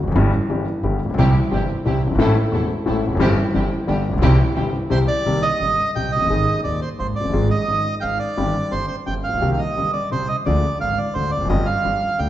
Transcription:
0.03 upright bass E1, grand piano E2
0.07 upright bass F1, grand piano F2 F#2
0.12 upright bass F#1 G1, grand piano G1 G2 E3 G3 G4
0.16 grand piano C4
0.50 upright bass G1, grand piano G1 G2 E3 G3 C4 G4
0.83 upright bass G1, grand piano G1 G2 D3 G3 B3 G4
1.05 upright bass A1, grand piano A1
1.10 upright bass A#1, grand piano A#1
1.14 upright bass B1, grand piano B1
1.18 upright bass C2, grand piano C2 C3 E3 G3 C4 G4, string section C4 E4 G4
1.52 upright bass G1, grand piano G1 G2 E3 G3 C4 G4, string section C4 E4 G4
1.85 upright bass C2, grand piano C2 C3 E3 G3 C4 G4, string section C4 E4 G4
2.07 upright bass F#1, grand piano F#1
2.11 grand piano G1, upright bass G1
2.15 grand piano G#1 A1 A2 E3 A3 C4 A4, upright bass G#1
2.19 upright bass A1, string section C4 E4 A4
2.52 grand piano E1 E2 E3 A3 C4 A4, upright bass E1, string section C4 E4 A4
2.86 grand piano A1 A2 E3 A3 C4 A4, upright bass A1, string section C4 E4 A4
3.07 upright bass E1, grand piano E2
3.12 upright bass F1, grand piano F2 F#2
3.17 upright bass F#1, grand piano G1 G2 E3 G3 C4 G4, string section C4
3.21 upright bass G1, string section E4 G4
3.54 grand piano G1 G2 E3 G3 C4 G4, upright bass G1, string section C4 E4 G4
3.87 grand piano G1 G2 D3 G3 B3 G4, upright bass G1, string section B3 D4 G4
4.09 grand piano A1, upright bass A1
4.13 upright bass A#1, grand piano A#1
4.18 upright bass B1, grand piano B1, string section C4
4.22 upright bass C2, grand piano C2 C3 E3 G3 C4 G4, string section E4 G4
4.56 upright bass G1, grand piano G1 G2 E3 G3 C4 G4, string section C4 E4 G4
4.90 grand piano C2 C3 E3 G3 C4 G4, upright bass C2, string section C4 E4 G4, bandoneon C5
5.08 bandoneon D5
5.26 grand piano C2 C3 D#3 A#3 C4 G4, upright bass C2
5.42 bandoneon D#5
5.60 upright bass G1, grand piano G1 G2
5.96 upright bass C2, grand piano C2 C3, bandoneon G5
6.12 bandoneon D#5
6.17 grand piano F1, upright bass F1
6.22 grand piano F#1, upright bass F#1
6.26 grand piano G1, upright bass G1
6.30 grand piano G#1 G#2 D#3 G#3 C4 G#4, upright bass G#1
6.64 grand piano D#1 D#2, upright bass D#2, bandoneon D5
6.81 bandoneon C5
6.99 grand piano G#1 G#2, upright bass G#1, bandoneon C5
7.16 bandoneon D5
7.20 grand piano F1, upright bass F1
7.25 grand piano F#1, upright bass F#1
7.29 grand piano G1 G#1 G#2 F3 G#3 C4, upright bass G1
7.33 upright bass G#1, grand piano G#4
7.50 bandoneon D#5
7.68 grand piano G#1 G#2, upright bass G#1
8.00 grand piano G#1 G#2, upright bass G#1, bandoneon F5 G5
8.19 bandoneon D5
8.37 grand piano G1 G2 D#3 G3 C4 G4, upright bass G1
8.71 grand piano G1 G2, upright bass G1, bandoneon C5
8.88 bandoneon C5
9.06 grand piano G1 G2, upright bass G1, bandoneon G5
9.24 bandoneon F5
9.29 grand piano A1, upright bass A1
9.33 grand piano A#1 B1, upright bass A#1
9.38 upright bass B1, grand piano C2 C3 D#3 A#3 C4 G4
9.42 upright bass C2
9.54 bandoneon F5
9.58 bandoneon D#5
9.77 upright bass G1, grand piano G1 G2
9.93 bandoneon D5
10.12 grand piano C2 C3, upright bass C2, bandoneon C5
10.28 bandoneon D#5
10.46 grand piano D2 D3 F3 G#3 D4 G#4, upright bass D2, bandoneon D5
10.81 grand piano G#1 G#2, upright bass G#1, bandoneon F5
10.98 bandoneon D5
11.14 grand piano D2 D3, upright bass D2, bandoneon C5
11.31 bandoneon D5
11.37 upright bass E1, grand piano E2
11.41 upright bass F1, grand piano F2
11.45 upright bass F#1, grand piano F#2, bandoneon D#5
11.50 grand piano G1 G2 F3 C4 D4 G4, upright bass G1
11.66 bandoneon F5
11.84 grand piano G1 G2, upright bass G1
12.19 grand piano D2 D3, upright bass D2, bandoneon G5

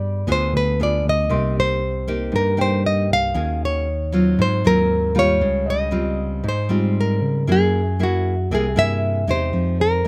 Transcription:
Already playing: tine electric piano G2, nylon-string guitar G3 B3 F4 G#4 D5, grand piano B5
0.27 tine electric piano D2, nylon-string guitar D3 B3 F4 G#4
0.32 nylon-string guitar C5
0.54 tine electric piano D2, nylon-string guitar B4
0.80 nylon-string guitar B3 F4 G#4 D5
1.05 tine electric piano D2
1.09 nylon-string guitar D#5
1.29 tine electric piano C2, nylon-string guitar C3 A#3 D#4 G4, grand piano C6
1.60 nylon-string guitar C5
2.07 nylon-string guitar A#3 D#4 G4
2.32 nylon-string guitar G2 A#4, tine electric piano G2
2.57 tine electric piano G2, nylon-string guitar A#3 D#4 G4, grand piano G5
2.61 nylon-string guitar C5
2.86 nylon-string guitar D#5
3.11 tine electric piano C2, nylon-string guitar F5
3.34 tine electric piano D#2, nylon-string guitar D#3 C#4 F#4 G#4
3.65 nylon-string guitar C#5
4.12 nylon-string guitar F#3 C4 F4
4.39 tine electric piano G#2, nylon-string guitar G#2 C5
4.64 tine electric piano D#2, nylon-string guitar F#3 C4 F4 A#4
5.15 tine electric piano D#2, nylon-string guitar G3 F4, grand piano F5
5.19 nylon-string guitar C#5
5.41 tine electric piano C#2, nylon-string guitar C#3
5.66 grand piano D#5
5.70 nylon-string guitar D#5
5.91 nylon-string guitar G3 C4 F4
6.44 nylon-string guitar G#2, tine electric piano G#2
6.49 nylon-string guitar C5
6.69 tine electric piano G#2, nylon-string guitar G3 C4 F4
7.01 nylon-string guitar A#4
7.21 tine electric piano C#3
7.47 tine electric piano F#2, nylon-string guitar F#3 A#3 E4 G#4
7.52 nylon-string guitar G#4
7.99 nylon-string guitar A#3 E4 F#4 G#4
8.51 tine electric piano C2, nylon-string guitar C3 A#3 E4 G#4
8.76 tine electric piano G2, nylon-string guitar A#3 E4 G#4 E5
9.27 tine electric piano E2, nylon-string guitar G#3 D#4 G4 C5
9.53 tine electric piano F2, nylon-string guitar F3
9.80 nylon-string guitar A#4, grand piano C5
10.05 nylon-string guitar D#4

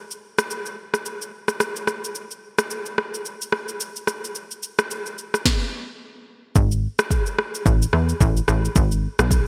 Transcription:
0.11 shaker
0.38 cross-stick, shaker
0.51 shaker
0.66 shaker
0.94 cross-stick, shaker
1.06 shaker
1.22 shaker
1.48 cross-stick, shaker
1.60 cross-stick, shaker
1.76 shaker
1.87 cross-stick, shaker
2.04 shaker
2.15 shaker
2.31 shaker
2.58 cross-stick, shaker
2.70 shaker
2.86 shaker
2.98 cross-stick
3.14 shaker
3.25 shaker
3.42 shaker
3.52 cross-stick
3.68 shaker
3.80 shaker
3.96 shaker
4.07 cross-stick, shaker
4.24 shaker
4.35 shaker
4.51 shaker
4.63 shaker
4.79 cross-stick, shaker
4.91 shaker
5.06 shaker
5.18 shaker
5.34 cross-stick, shaker
5.46 kick, snare
6.56 analog synth bass G#1, kick, shaker
6.71 shaker
6.99 cross-stick, shaker
7.11 kick, shaker
7.26 shaker
7.39 cross-stick
7.55 shaker
7.66 analog synth bass A1, kick, shaker
7.82 shaker
7.93 analog synth bass E2, cross-stick
8.09 shaker
8.21 analog synth bass A1, kick, shaker
8.37 shaker
8.48 analog synth bass A1, cross-stick, shaker
8.65 shaker
8.76 analog synth bass G#1, kick, shaker
8.92 shaker
9.19 analog synth bass B1, cross-stick, shaker
9.31 kick, shaker

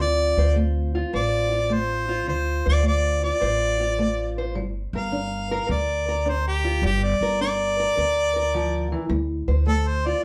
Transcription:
Already playing: steel-string acoustic guitar C4 F4
0.00 upright bass D2, steel-string acoustic guitar D3, harmonica D5
0.37 upright bass D2, steel-string acoustic guitar C5
0.56 steel-string acoustic guitar A3
0.95 steel-string acoustic guitar F4
1.13 upright bass A1, steel-string acoustic guitar A2 C5, harmonica D5
1.52 steel-string acoustic guitar F4
1.70 steel-string acoustic guitar A3, harmonica C5
2.09 steel-string acoustic guitar F4
2.27 upright bass D2, steel-string acoustic guitar D3, harmonica C5
2.66 upright bass D2, steel-string acoustic guitar C5, harmonica D5
2.83 steel-string acoustic guitar A3
2.87 harmonica D5
3.23 steel-string acoustic guitar F4, harmonica D5
3.41 upright bass A1, steel-string acoustic guitar A2 C5
3.81 steel-string acoustic guitar F4
3.99 steel-string acoustic guitar A3
4.38 steel-string acoustic guitar C5
4.55 upright bass G1, steel-string acoustic guitar G3
4.93 upright bass G1, steel-string acoustic guitar A#4, harmonica F5
5.12 steel-string acoustic guitar D4
5.51 steel-string acoustic guitar A#4
5.69 upright bass D2, steel-string acoustic guitar D3 A#4, harmonica D5
6.08 steel-string acoustic guitar A#4
6.26 steel-string acoustic guitar D4, harmonica C5
6.48 harmonica G4
6.64 steel-string acoustic guitar F4
6.82 upright bass G1, steel-string acoustic guitar G3, harmonica G4
7.03 harmonica D5
7.21 upright bass G1, steel-string acoustic guitar A#4
7.41 steel-string acoustic guitar D4, harmonica D5
7.80 steel-string acoustic guitar A#4
7.97 upright bass D2, steel-string acoustic guitar D3 A#4
8.36 steel-string acoustic guitar A#4
8.54 steel-string acoustic guitar F3
8.92 steel-string acoustic guitar E3
9.10 upright bass D2, steel-string acoustic guitar D3
9.48 upright bass D2, steel-string acoustic guitar C5
9.67 steel-string acoustic guitar A3, harmonica A4
9.88 harmonica C5
10.06 steel-string acoustic guitar F4, harmonica D5

